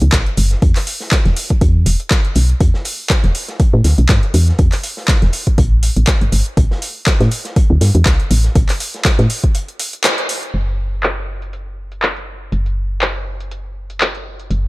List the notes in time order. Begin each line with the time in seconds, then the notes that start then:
0.02 C#2, closed hi-hat
0.12 A1, kick, snare, clap, closed hi-hat
0.26 closed hi-hat
0.37 F#1, closed hi-hat, open hi-hat
0.51 snare, closed hi-hat
0.62 E2, kick, closed hi-hat
0.76 clap, closed hi-hat, open hi-hat
0.87 closed hi-hat, open hi-hat
1.00 snare
1.11 kick, snare, clap, closed hi-hat
1.25 E1, snare, closed hi-hat
1.36 closed hi-hat, open hi-hat
1.50 kick, closed hi-hat
1.61 E2, kick, closed hi-hat
1.86 E1, closed hi-hat, open hi-hat
2.00 closed hi-hat
2.10 kick, snare, clap, closed hi-hat
2.25 closed hi-hat
2.35 B1, closed hi-hat, open hi-hat
2.49 closed hi-hat
2.60 E2, kick, closed hi-hat
2.74 snare
2.85 closed hi-hat, open hi-hat
3.10 kick, snare, clap, closed hi-hat
3.23 E1, snare, closed hi-hat
3.35 closed hi-hat, open hi-hat
3.48 snare, closed hi-hat
3.60 kick, closed hi-hat
3.73 A2
3.84 D2, snare, closed hi-hat, open hi-hat
3.98 B1, closed hi-hat
4.09 G2, kick, snare, clap, closed hi-hat
4.23 closed hi-hat
4.34 E2, closed hi-hat, open hi-hat
4.48 snare, closed hi-hat
4.59 E2, kick, closed hi-hat
4.72 clap, closed hi-hat, open hi-hat
4.84 closed hi-hat, open hi-hat
4.97 snare
5.08 kick, snare, clap, closed hi-hat
5.22 E1, snare, closed hi-hat
5.33 closed hi-hat, open hi-hat
5.47 kick, closed hi-hat
5.58 A1, kick, closed hi-hat
5.83 closed hi-hat, open hi-hat
5.97 A1, closed hi-hat
6.07 kick, snare, clap, closed hi-hat
6.21 G1, closed hi-hat
6.32 G1, closed hi-hat, open hi-hat
6.46 closed hi-hat
6.57 A1, kick, closed hi-hat
6.71 snare
6.82 closed hi-hat, open hi-hat
7.06 kick, snare, clap, closed hi-hat
7.20 A2, snare, closed hi-hat
7.31 closed hi-hat, open hi-hat
7.45 snare, closed hi-hat
7.56 kick, closed hi-hat
7.70 D2
7.81 G2, snare, closed hi-hat, open hi-hat
7.95 E2, closed hi-hat
8.05 C2, kick, snare, clap, closed hi-hat
8.20 closed hi-hat
8.31 A1, closed hi-hat, open hi-hat
8.44 snare, closed hi-hat
8.55 A1, kick, closed hi-hat
8.69 clap, closed hi-hat, open hi-hat
8.80 closed hi-hat, open hi-hat
8.94 snare, closed hi-hat
9.05 kick, snare, clap, closed hi-hat
9.18 A2, snare, closed hi-hat
9.30 closed hi-hat, open hi-hat
9.44 kick, closed hi-hat
9.55 closed hi-hat
9.68 closed hi-hat
9.79 closed hi-hat, open hi-hat
9.93 closed hi-hat
10.04 snare, clap, closed hi-hat
10.18 closed hi-hat
10.29 closed hi-hat, open hi-hat
10.43 closed hi-hat
10.54 F#1, closed hi-hat
11.03 clap, closed hi-hat
11.42 closed hi-hat
11.53 closed hi-hat
11.92 closed hi-hat
12.02 clap, closed hi-hat
12.16 closed hi-hat
12.52 F#1, closed hi-hat
12.66 closed hi-hat
13.01 clap, closed hi-hat
13.40 closed hi-hat
13.51 closed hi-hat
13.90 closed hi-hat
14.01 clap, closed hi-hat
14.15 closed hi-hat
14.40 closed hi-hat
14.51 F#1, closed hi-hat